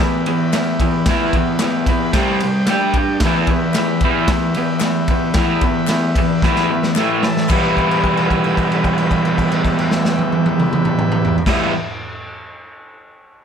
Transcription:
0.00 0.24 E3 medium
0.00 0.25 B3 medium
0.00 2.09 G4 medium
0.00 2.10 B4 medium
0.00 2.11 E5 medium
0.26 0.51 E3 medium
0.26 0.52 B3 medium
0.26 ride medium
0.53 0.78 E3 medium
0.53 0.78 B3 medium
0.53 snare loud
0.53 clap medium
0.53 ride medium
0.80 1.05 E3 medium
0.80 1.05 B3 medium
0.80 kick medium
0.80 ride medium
1.06 1.33 E3 medium
1.06 1.33 B3 medium
1.06 kick loud
1.06 snare loud
1.06 ride loud
1.10 1.34 E4 loud
1.33 1.59 E3 medium
1.33 1.59 B3 medium
1.33 kick medium
1.33 ride medium
1.59 1.86 E3 medium
1.59 1.86 B3 medium
1.59 snare loud
1.59 clap medium
1.59 ride medium
1.86 2.12 E3 medium
1.86 2.12 B3 medium
1.86 2.12 B5 medium
1.86 kick medium
1.86 ride medium
2.11 2.40 C3 medium
2.11 2.64 G4 medium
2.11 2.67 C5 medium
2.11 2.38 G5 medium
2.11 2.38 A5 medium
2.11 kick loud
2.11 snare loud
2.11 ride loud
2.15 2.40 G3 medium
2.15 2.40 C4 loud
2.40 2.66 G3 medium
2.40 2.65 G5 medium
2.40 ride medium
2.44 2.66 C3 medium
2.65 3.18 G4 medium
2.65 2.96 D5 medium
2.65 2.91 E5 medium
2.65 3.21 G5 medium
2.65 snare loud
2.65 clap medium
2.65 ride loud
2.69 2.94 G3 medium
2.69 2.94 D4 loud
2.69 2.94 G4 loud
2.94 3.20 G3 medium
2.94 3.20 D4 medium
2.94 3.21 D5 medium
2.94 kick medium
2.94 ride medium
3.19 6.91 G4 medium
3.19 6.92 B4 medium
3.19 kick loud
3.19 snare loud
3.19 ride loud
3.24 3.48 E3 medium
3.24 3.49 B3 medium
3.24 3.49 E4 medium
3.24 6.93 E5 medium
3.47 3.74 E3 medium
3.47 kick medium
3.47 ride medium
3.51 3.74 B3 medium
3.74 4.00 E3 medium
3.74 snare loud
3.74 clap medium
3.74 ride medium
3.78 4.01 B3 medium
4.01 4.28 E3 medium
4.01 4.28 B3 loud
4.01 kick medium
4.01 ride medium
4.05 4.28 E4 loud
4.28 4.54 E3 medium
4.28 4.54 B3 medium
4.28 kick loud
4.28 snare loud
4.28 ride medium
4.54 4.80 E3 medium
4.54 4.80 B3 medium
4.54 ride medium
4.80 5.07 E3 medium
4.80 5.07 B3 medium
4.80 snare loud
4.80 clap loud
4.80 ride medium
5.08 5.34 E3 medium
5.08 5.34 B3 medium
5.08 kick medium
5.08 ride medium
5.34 5.62 E3 medium
5.34 kick loud
5.34 snare loud
5.34 ride loud
5.38 5.62 B3 medium
5.38 5.62 E4 loud
5.61 5.87 E3 medium
5.61 5.87 B3 medium
5.61 kick medium
5.61 ride medium
5.87 6.14 E3 medium
5.87 6.14 B3 medium
5.87 snare loud
5.87 clap loud
5.87 ride loud
6.15 6.41 E3 medium
6.15 6.41 B3 medium
6.15 kick medium
6.15 ride medium
6.42 6.68 E3 medium
6.42 6.69 B3 loud
6.42 6.69 E4 loud
6.42 kick loud
6.42 snare medium
6.56 snare medium
6.70 6.94 E3 medium
6.70 6.94 B3 medium
6.83 snare medium
6.96 7.22 A2 medium
6.96 7.22 E3 medium
6.96 7.22 A3 medium
6.96 7.50 E4 medium
6.96 7.50 A4 medium
6.96 7.51 E5 medium
6.96 snare medium
6.96 clap loud
7.22 7.47 A2 medium
7.22 7.47 E3 medium
7.22 7.48 A5 medium
7.22 snare loud
7.37 snare medium
7.49 11.39 E2 medium
7.49 11.39 B2 loud
7.49 11.40 E3 medium
7.49 11.40 G3 loud
7.49 11.40 B3 loud
7.49 11.37 B4 medium
7.49 11.37 E5 medium
7.49 kick loud
7.49 clap medium
7.49 crash medium
7.53 11.41 E4 medium
7.53 11.37 G4 medium
7.77 kick medium
7.77 crash soft
7.91 crash medium
8.04 kick medium
8.04 crash soft
8.17 crash soft
8.30 kick medium
8.30 crash soft
8.44 crash soft
8.57 kick medium
8.57 crash soft
8.72 crash soft
8.84 kick medium
8.84 crash soft
8.98 crash medium
9.11 kick medium
9.11 crash soft
9.25 crash soft
9.38 kick medium
9.38 crash medium
9.52 crash medium
9.65 kick medium
9.65 crash medium
9.79 crash medium
9.91 snare medium
10.05 snare loud
10.19 high tom medium
10.32 high tom medium
10.46 high tom loud
10.60 mid tom loud
10.73 mid tom loud
10.85 mid tom loud
10.99 mid tom medium
11.12 mid tom loud
11.25 floor tom loud
11.38 floor tom loud
11.46 11.70 E2 loud
11.46 11.71 B2 loud
11.46 11.71 E3 medium
11.46 11.71 G3 loud
11.46 11.72 B3 loud
11.46 11.72 E4 loud
11.46 11.69 G4 medium
11.46 11.69 B4 medium
11.46 11.68 E5 loud
11.46 kick medium
11.46 snare medium
11.46 crash medium

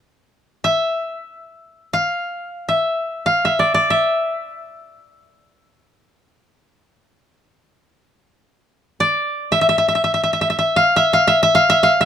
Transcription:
0.64 1.99 E5 medium
1.93 2.75 F5 medium
2.69 3.32 E5 medium
3.26 3.51 F5 medium
3.45 3.90 E5 medium
3.59 3.74 D5 medium
3.74 5.34 D5 medium
3.90 6.98 E5 medium
9.00 10.60 D5 medium
9.52 9.61 E5 medium
9.61 9.68 E5 medium
9.69 9.78 E5 medium
9.78 9.88 E5 medium
9.88 9.95 E5 medium
9.95 10.04 E5 medium
10.04 10.14 E5 medium
10.14 10.23 E5 medium
10.23 10.33 E5 medium
10.33 10.41 E5 medium
10.41 10.49 E5 medium
10.50 10.58 E5 medium
10.59 10.82 E5 medium
10.76 11.02 F5 loud
10.96 11.19 E5 medium
11.13 11.33 F5 medium
11.27 11.42 E5 medium
11.43 11.61 E5 loud
11.55 11.76 F5 loud
11.70 11.89 E5 medium
11.83 12.05 F5 medium
12.01 12.05 E5 medium

